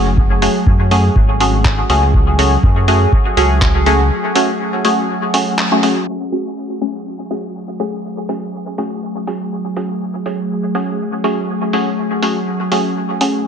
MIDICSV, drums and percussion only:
0, 0, Header, 1, 2, 480
1, 0, Start_track
1, 0, Key_signature, 3, "minor"
1, 0, Tempo, 491803
1, 171, Time_signature, 4, 2, 24, 8
1, 13150, End_track
2, 0, Start_track
2, 0, Title_t, "Drums"
2, 171, Note_on_c, 9, 36, 115
2, 269, Note_off_c, 9, 36, 0
2, 412, Note_on_c, 9, 46, 78
2, 509, Note_off_c, 9, 46, 0
2, 651, Note_on_c, 9, 36, 118
2, 749, Note_off_c, 9, 36, 0
2, 891, Note_on_c, 9, 46, 78
2, 989, Note_off_c, 9, 46, 0
2, 1131, Note_on_c, 9, 36, 112
2, 1229, Note_off_c, 9, 36, 0
2, 1371, Note_on_c, 9, 46, 78
2, 1469, Note_off_c, 9, 46, 0
2, 1611, Note_on_c, 9, 36, 114
2, 1611, Note_on_c, 9, 39, 84
2, 1709, Note_off_c, 9, 36, 0
2, 1709, Note_off_c, 9, 39, 0
2, 1851, Note_on_c, 9, 46, 80
2, 1949, Note_off_c, 9, 46, 0
2, 2091, Note_on_c, 9, 36, 114
2, 2189, Note_off_c, 9, 36, 0
2, 2331, Note_on_c, 9, 46, 76
2, 2429, Note_off_c, 9, 46, 0
2, 2571, Note_on_c, 9, 36, 114
2, 2669, Note_off_c, 9, 36, 0
2, 2811, Note_on_c, 9, 46, 73
2, 2909, Note_off_c, 9, 46, 0
2, 3051, Note_on_c, 9, 36, 108
2, 3149, Note_off_c, 9, 36, 0
2, 3291, Note_on_c, 9, 46, 74
2, 3389, Note_off_c, 9, 46, 0
2, 3531, Note_on_c, 9, 36, 111
2, 3531, Note_on_c, 9, 39, 88
2, 3628, Note_off_c, 9, 36, 0
2, 3628, Note_off_c, 9, 39, 0
2, 3771, Note_on_c, 9, 46, 80
2, 3868, Note_off_c, 9, 46, 0
2, 4250, Note_on_c, 9, 46, 84
2, 4348, Note_off_c, 9, 46, 0
2, 4730, Note_on_c, 9, 46, 78
2, 4828, Note_off_c, 9, 46, 0
2, 5211, Note_on_c, 9, 46, 81
2, 5308, Note_off_c, 9, 46, 0
2, 5451, Note_on_c, 9, 39, 91
2, 5548, Note_off_c, 9, 39, 0
2, 5691, Note_on_c, 9, 46, 77
2, 5788, Note_off_c, 9, 46, 0
2, 6171, Note_on_c, 9, 46, 72
2, 6269, Note_off_c, 9, 46, 0
2, 6652, Note_on_c, 9, 46, 71
2, 6749, Note_off_c, 9, 46, 0
2, 7132, Note_on_c, 9, 46, 76
2, 7229, Note_off_c, 9, 46, 0
2, 7612, Note_on_c, 9, 46, 73
2, 7709, Note_off_c, 9, 46, 0
2, 8091, Note_on_c, 9, 46, 77
2, 8189, Note_off_c, 9, 46, 0
2, 8571, Note_on_c, 9, 46, 75
2, 8669, Note_off_c, 9, 46, 0
2, 9051, Note_on_c, 9, 46, 78
2, 9149, Note_off_c, 9, 46, 0
2, 9531, Note_on_c, 9, 46, 81
2, 9629, Note_off_c, 9, 46, 0
2, 10012, Note_on_c, 9, 46, 81
2, 10109, Note_off_c, 9, 46, 0
2, 10492, Note_on_c, 9, 46, 77
2, 10589, Note_off_c, 9, 46, 0
2, 10971, Note_on_c, 9, 46, 79
2, 11069, Note_off_c, 9, 46, 0
2, 11452, Note_on_c, 9, 46, 83
2, 11549, Note_off_c, 9, 46, 0
2, 11932, Note_on_c, 9, 46, 81
2, 12029, Note_off_c, 9, 46, 0
2, 12412, Note_on_c, 9, 46, 78
2, 12509, Note_off_c, 9, 46, 0
2, 12892, Note_on_c, 9, 46, 82
2, 12989, Note_off_c, 9, 46, 0
2, 13150, End_track
0, 0, End_of_file